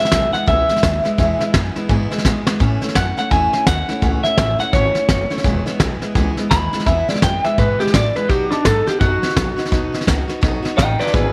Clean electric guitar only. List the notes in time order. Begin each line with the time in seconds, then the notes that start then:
0.00 E5
0.33 F#5
0.48 E5
2.96 F#5
3.19 F#5
3.32 G#5
3.68 F#5
4.24 E5
4.60 F#5
4.73 C#5
6.51 B5
6.87 E5
7.09 D5
7.23 G5
7.45 E5
7.59 B4
7.80 G4
7.94 D5
8.16 B4
8.29 G4
8.51 D4
8.65 A4
8.87 G4
9.00 F#4
10.77 D#5 G5
10.99 B4 D5
11.13 G#4 B4